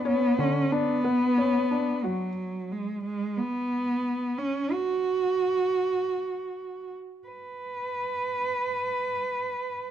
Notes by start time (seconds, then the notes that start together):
0.05 B3 C#4
0.38 D3 C#4
0.72 B3 D4
1.04 B3
1.38 C#4
1.71 D4
2.04 F#3 F#4
2.71 G#3
3.04 G#3
3.37 B3
4.38 C#4
4.72 F#4
7.28 B4